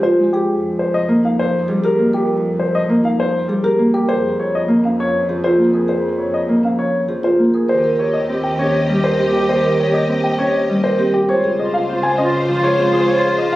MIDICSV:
0, 0, Header, 1, 7, 480
1, 0, Start_track
1, 0, Tempo, 600000
1, 389, Time_signature, 3, 2, 24, 8
1, 10846, End_track
2, 0, Start_track
2, 0, Title_t, "Grand piano"
2, 0, Program_c, 0, 0
2, 24, Note_on_c, 0, 72, 70
2, 183, Note_off_c, 0, 72, 0
2, 263, Note_on_c, 0, 67, 64
2, 423, Note_off_c, 0, 67, 0
2, 634, Note_on_c, 0, 72, 61
2, 754, Note_on_c, 0, 75, 78
2, 787, Note_off_c, 0, 72, 0
2, 906, Note_off_c, 0, 75, 0
2, 999, Note_on_c, 0, 77, 64
2, 1115, Note_on_c, 0, 72, 80
2, 1148, Note_off_c, 0, 77, 0
2, 1267, Note_off_c, 0, 72, 0
2, 1477, Note_on_c, 0, 70, 80
2, 1628, Note_off_c, 0, 70, 0
2, 1714, Note_on_c, 0, 67, 69
2, 1867, Note_off_c, 0, 67, 0
2, 2076, Note_on_c, 0, 72, 69
2, 2199, Note_on_c, 0, 75, 79
2, 2227, Note_off_c, 0, 72, 0
2, 2348, Note_off_c, 0, 75, 0
2, 2438, Note_on_c, 0, 77, 67
2, 2558, Note_on_c, 0, 72, 79
2, 2588, Note_off_c, 0, 77, 0
2, 2708, Note_off_c, 0, 72, 0
2, 2910, Note_on_c, 0, 70, 81
2, 3065, Note_off_c, 0, 70, 0
2, 3151, Note_on_c, 0, 67, 69
2, 3269, Note_on_c, 0, 72, 81
2, 3306, Note_off_c, 0, 67, 0
2, 3425, Note_off_c, 0, 72, 0
2, 3517, Note_on_c, 0, 73, 66
2, 3640, Note_on_c, 0, 75, 70
2, 3668, Note_off_c, 0, 73, 0
2, 3789, Note_off_c, 0, 75, 0
2, 3880, Note_on_c, 0, 77, 61
2, 4001, Note_on_c, 0, 73, 79
2, 4029, Note_off_c, 0, 77, 0
2, 4149, Note_off_c, 0, 73, 0
2, 4354, Note_on_c, 0, 72, 75
2, 4507, Note_off_c, 0, 72, 0
2, 4593, Note_on_c, 0, 68, 54
2, 4712, Note_on_c, 0, 72, 65
2, 4746, Note_off_c, 0, 68, 0
2, 4866, Note_off_c, 0, 72, 0
2, 4948, Note_on_c, 0, 73, 56
2, 5071, Note_on_c, 0, 75, 66
2, 5105, Note_off_c, 0, 73, 0
2, 5226, Note_off_c, 0, 75, 0
2, 5317, Note_on_c, 0, 77, 51
2, 5430, Note_on_c, 0, 73, 65
2, 5468, Note_off_c, 0, 77, 0
2, 5585, Note_off_c, 0, 73, 0
2, 5794, Note_on_c, 0, 72, 63
2, 5947, Note_off_c, 0, 72, 0
2, 6035, Note_on_c, 0, 68, 52
2, 6154, Note_on_c, 0, 72, 68
2, 6187, Note_off_c, 0, 68, 0
2, 6307, Note_off_c, 0, 72, 0
2, 6395, Note_on_c, 0, 73, 60
2, 6507, Note_on_c, 0, 75, 64
2, 6547, Note_off_c, 0, 73, 0
2, 6664, Note_off_c, 0, 75, 0
2, 6747, Note_on_c, 0, 79, 53
2, 6873, Note_on_c, 0, 73, 70
2, 6904, Note_off_c, 0, 79, 0
2, 7026, Note_off_c, 0, 73, 0
2, 7231, Note_on_c, 0, 72, 69
2, 7386, Note_off_c, 0, 72, 0
2, 7463, Note_on_c, 0, 67, 54
2, 7594, Note_on_c, 0, 72, 65
2, 7623, Note_off_c, 0, 67, 0
2, 7746, Note_off_c, 0, 72, 0
2, 7834, Note_on_c, 0, 73, 54
2, 7949, Note_on_c, 0, 75, 66
2, 7987, Note_off_c, 0, 73, 0
2, 8105, Note_off_c, 0, 75, 0
2, 8188, Note_on_c, 0, 79, 57
2, 8309, Note_on_c, 0, 73, 70
2, 8345, Note_off_c, 0, 79, 0
2, 8465, Note_off_c, 0, 73, 0
2, 8670, Note_on_c, 0, 72, 66
2, 8825, Note_off_c, 0, 72, 0
2, 8909, Note_on_c, 0, 67, 59
2, 9032, Note_on_c, 0, 73, 70
2, 9065, Note_off_c, 0, 67, 0
2, 9186, Note_off_c, 0, 73, 0
2, 9274, Note_on_c, 0, 75, 58
2, 9390, Note_on_c, 0, 77, 71
2, 9427, Note_off_c, 0, 75, 0
2, 9545, Note_off_c, 0, 77, 0
2, 9625, Note_on_c, 0, 80, 62
2, 9744, Note_on_c, 0, 75, 72
2, 9783, Note_off_c, 0, 80, 0
2, 9903, Note_off_c, 0, 75, 0
2, 10107, Note_on_c, 0, 73, 74
2, 10264, Note_off_c, 0, 73, 0
2, 10345, Note_on_c, 0, 68, 66
2, 10464, Note_on_c, 0, 73, 72
2, 10503, Note_off_c, 0, 68, 0
2, 10623, Note_off_c, 0, 73, 0
2, 10704, Note_on_c, 0, 75, 64
2, 10820, Note_on_c, 0, 77, 83
2, 10846, Note_off_c, 0, 75, 0
2, 10846, Note_off_c, 0, 77, 0
2, 10846, End_track
3, 0, Start_track
3, 0, Title_t, "String section"
3, 0, Program_c, 1, 48
3, 6158, Note_on_c, 1, 67, 57
3, 6163, Note_on_c, 1, 75, 62
3, 8882, Note_off_c, 1, 67, 0
3, 8884, Note_off_c, 1, 75, 0
3, 9037, Note_on_c, 1, 65, 63
3, 9039, Note_on_c, 1, 72, 66
3, 10846, Note_off_c, 1, 65, 0
3, 10846, Note_off_c, 1, 72, 0
3, 10846, End_track
4, 0, Start_track
4, 0, Title_t, "Marimba"
4, 0, Program_c, 2, 12
4, 31, Note_on_c, 2, 65, 75
4, 186, Note_off_c, 2, 65, 0
4, 270, Note_on_c, 2, 68, 66
4, 425, Note_off_c, 2, 68, 0
4, 988, Note_on_c, 2, 63, 62
4, 1144, Note_off_c, 2, 63, 0
4, 1346, Note_on_c, 2, 68, 65
4, 1469, Note_on_c, 2, 67, 85
4, 1504, Note_off_c, 2, 68, 0
4, 1625, Note_off_c, 2, 67, 0
4, 1708, Note_on_c, 2, 70, 67
4, 1864, Note_off_c, 2, 70, 0
4, 2431, Note_on_c, 2, 63, 65
4, 2585, Note_off_c, 2, 63, 0
4, 2794, Note_on_c, 2, 68, 70
4, 2913, Note_on_c, 2, 67, 81
4, 2947, Note_off_c, 2, 68, 0
4, 3066, Note_off_c, 2, 67, 0
4, 3153, Note_on_c, 2, 70, 62
4, 3270, Note_on_c, 2, 68, 82
4, 3306, Note_off_c, 2, 70, 0
4, 3425, Note_off_c, 2, 68, 0
4, 3872, Note_on_c, 2, 61, 61
4, 4026, Note_off_c, 2, 61, 0
4, 4232, Note_on_c, 2, 68, 57
4, 4351, Note_on_c, 2, 65, 77
4, 4386, Note_off_c, 2, 68, 0
4, 4506, Note_off_c, 2, 65, 0
4, 4589, Note_on_c, 2, 70, 52
4, 4707, Note_on_c, 2, 68, 74
4, 4745, Note_off_c, 2, 70, 0
4, 4864, Note_off_c, 2, 68, 0
4, 5307, Note_on_c, 2, 61, 55
4, 5464, Note_off_c, 2, 61, 0
4, 5669, Note_on_c, 2, 68, 52
4, 5787, Note_on_c, 2, 65, 67
4, 5825, Note_off_c, 2, 68, 0
4, 5944, Note_off_c, 2, 65, 0
4, 6030, Note_on_c, 2, 70, 50
4, 6149, Note_on_c, 2, 72, 60
4, 6185, Note_off_c, 2, 70, 0
4, 6271, Note_on_c, 2, 70, 64
4, 6305, Note_off_c, 2, 72, 0
4, 6426, Note_off_c, 2, 70, 0
4, 6876, Note_on_c, 2, 61, 59
4, 7027, Note_off_c, 2, 61, 0
4, 7237, Note_on_c, 2, 70, 58
4, 7353, Note_on_c, 2, 67, 74
4, 7388, Note_off_c, 2, 70, 0
4, 7506, Note_off_c, 2, 67, 0
4, 7599, Note_on_c, 2, 72, 58
4, 7713, Note_on_c, 2, 70, 67
4, 7748, Note_off_c, 2, 72, 0
4, 7866, Note_off_c, 2, 70, 0
4, 8314, Note_on_c, 2, 61, 59
4, 8466, Note_off_c, 2, 61, 0
4, 8671, Note_on_c, 2, 70, 58
4, 8790, Note_on_c, 2, 67, 76
4, 8826, Note_off_c, 2, 70, 0
4, 8945, Note_off_c, 2, 67, 0
4, 9031, Note_on_c, 2, 72, 64
4, 9152, Note_on_c, 2, 68, 71
4, 9185, Note_off_c, 2, 72, 0
4, 9306, Note_off_c, 2, 68, 0
4, 9749, Note_on_c, 2, 61, 68
4, 9905, Note_off_c, 2, 61, 0
4, 10112, Note_on_c, 2, 68, 66
4, 10232, Note_on_c, 2, 65, 74
4, 10266, Note_off_c, 2, 68, 0
4, 10386, Note_off_c, 2, 65, 0
4, 10472, Note_on_c, 2, 72, 67
4, 10590, Note_on_c, 2, 68, 76
4, 10626, Note_off_c, 2, 72, 0
4, 10745, Note_off_c, 2, 68, 0
4, 10846, End_track
5, 0, Start_track
5, 0, Title_t, "Clarinet"
5, 0, Program_c, 3, 71
5, 6147, Note_on_c, 3, 67, 33
5, 6323, Note_off_c, 3, 67, 0
5, 6398, Note_on_c, 3, 67, 45
5, 6574, Note_off_c, 3, 67, 0
5, 6644, Note_on_c, 3, 67, 52
5, 6822, Note_off_c, 3, 67, 0
5, 6891, Note_on_c, 3, 67, 58
5, 7070, Note_off_c, 3, 67, 0
5, 7141, Note_on_c, 3, 67, 62
5, 7321, Note_off_c, 3, 67, 0
5, 7393, Note_on_c, 3, 67, 66
5, 7573, Note_off_c, 3, 67, 0
5, 7639, Note_on_c, 3, 67, 66
5, 7820, Note_off_c, 3, 67, 0
5, 7902, Note_on_c, 3, 67, 67
5, 8079, Note_off_c, 3, 67, 0
5, 8153, Note_on_c, 3, 67, 52
5, 8330, Note_off_c, 3, 67, 0
5, 8395, Note_on_c, 3, 67, 45
5, 8575, Note_off_c, 3, 67, 0
5, 8656, Note_on_c, 3, 67, 36
5, 8832, Note_off_c, 3, 67, 0
5, 9026, Note_on_c, 3, 65, 37
5, 9203, Note_off_c, 3, 65, 0
5, 9283, Note_on_c, 3, 65, 52
5, 9458, Note_off_c, 3, 65, 0
5, 9533, Note_on_c, 3, 65, 55
5, 9708, Note_off_c, 3, 65, 0
5, 9791, Note_on_c, 3, 65, 66
5, 9963, Note_off_c, 3, 65, 0
5, 10035, Note_on_c, 3, 65, 64
5, 10210, Note_off_c, 3, 65, 0
5, 10283, Note_on_c, 3, 65, 68
5, 10458, Note_off_c, 3, 65, 0
5, 10531, Note_on_c, 3, 65, 82
5, 10708, Note_off_c, 3, 65, 0
5, 10785, Note_on_c, 3, 65, 73
5, 10846, Note_off_c, 3, 65, 0
5, 10846, End_track
6, 0, Start_track
6, 0, Title_t, "Harp"
6, 0, Program_c, 4, 46
6, 0, Note_on_c, 4, 53, 59
6, 0, Note_on_c, 4, 56, 63
6, 138, Note_off_c, 4, 56, 0
6, 148, Note_on_c, 4, 56, 52
6, 406, Note_off_c, 4, 53, 0
6, 868, Note_on_c, 4, 58, 67
6, 1349, Note_on_c, 4, 55, 64
6, 1576, Note_off_c, 4, 58, 0
6, 1585, Note_on_c, 4, 58, 62
6, 2303, Note_off_c, 4, 58, 0
6, 2313, Note_on_c, 4, 58, 71
6, 2773, Note_off_c, 4, 55, 0
6, 2783, Note_on_c, 4, 55, 61
6, 3021, Note_off_c, 4, 58, 0
6, 3031, Note_on_c, 4, 58, 63
6, 3268, Note_off_c, 4, 56, 0
6, 3285, Note_off_c, 4, 55, 0
6, 3734, Note_off_c, 4, 58, 0
6, 3744, Note_on_c, 4, 58, 66
6, 4231, Note_on_c, 4, 53, 58
6, 4461, Note_off_c, 4, 58, 0
6, 4470, Note_on_c, 4, 58, 53
6, 5179, Note_off_c, 4, 58, 0
6, 5189, Note_on_c, 4, 58, 53
6, 5658, Note_off_c, 4, 53, 0
6, 5667, Note_on_c, 4, 53, 51
6, 5902, Note_off_c, 4, 58, 0
6, 5911, Note_on_c, 4, 58, 47
6, 6167, Note_off_c, 4, 53, 0
6, 6635, Note_on_c, 4, 60, 54
6, 7112, Note_on_c, 4, 55, 56
6, 7345, Note_off_c, 4, 60, 0
6, 7354, Note_on_c, 4, 60, 52
6, 8061, Note_off_c, 4, 60, 0
6, 8070, Note_on_c, 4, 60, 61
6, 8545, Note_off_c, 4, 55, 0
6, 8555, Note_on_c, 4, 55, 58
6, 8786, Note_off_c, 4, 60, 0
6, 8796, Note_on_c, 4, 60, 56
6, 9031, Note_off_c, 4, 58, 0
6, 9051, Note_off_c, 4, 55, 0
6, 9502, Note_off_c, 4, 60, 0
6, 9512, Note_on_c, 4, 60, 61
6, 9992, Note_on_c, 4, 53, 64
6, 10223, Note_off_c, 4, 60, 0
6, 10233, Note_on_c, 4, 60, 58
6, 10846, Note_off_c, 4, 53, 0
6, 10846, Note_off_c, 4, 60, 0
6, 10846, End_track
7, 0, Start_track
7, 0, Title_t, "Double bass section"
7, 0, Program_c, 5, 48
7, 0, Note_on_c, 5, 41, 56
7, 262, Note_off_c, 5, 41, 0
7, 386, Note_on_c, 5, 41, 62
7, 3139, Note_off_c, 5, 41, 0
7, 3267, Note_on_c, 5, 41, 69
7, 6020, Note_off_c, 5, 41, 0
7, 6149, Note_on_c, 5, 39, 61
7, 8901, Note_off_c, 5, 39, 0
7, 9029, Note_on_c, 5, 37, 63
7, 10846, Note_off_c, 5, 37, 0
7, 10846, End_track
0, 0, End_of_file